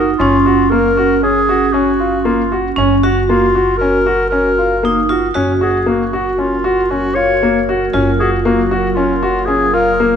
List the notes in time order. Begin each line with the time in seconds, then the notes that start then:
Already playing: F#1 D#4
0.18 F#1 C#4 F4
0.46 F#4
0.71 A#3 A#4
0.97 F#4
1.23 C#4 G#4
1.49 F#4
1.73 C#4 F#4
2.00 F4
2.25 A#3 F4
2.52 F#4
2.76 F#1 C#4
3.03 F#4
3.27 A#3 F4
3.55 F#4
3.77 C#4 A#4
4.06 F#4
4.29 C#4 A#4
4.58 F4
4.83 A#3 D#4
5.09 F4 F#4
5.34 F#1 F#3 A#3 C#4 F#4 A#4
5.61 F#4 G#4
5.86 A#3 F#4
6.13 F#4
6.38 C#4 F4
6.64 F#4
6.91 C#4 F#4
7.15 F4 C#5
7.43 A#3
7.69 F#4
7.94 F#1 C#4 F4
8.19 F#4 G#4
8.45 A#3 F#4
8.71 F#4
8.96 C#4 F4
9.23 F#4
9.46 C#4 G#4
9.74 F4 A#4
10.00 A#3